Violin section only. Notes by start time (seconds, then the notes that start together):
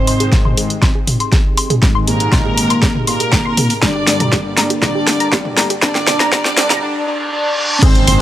Already playing: C5
2.08 A#4
3.07 A#4
3.82 D5
4.82 D5
5.83 D5
6.32 D5
7.82 C5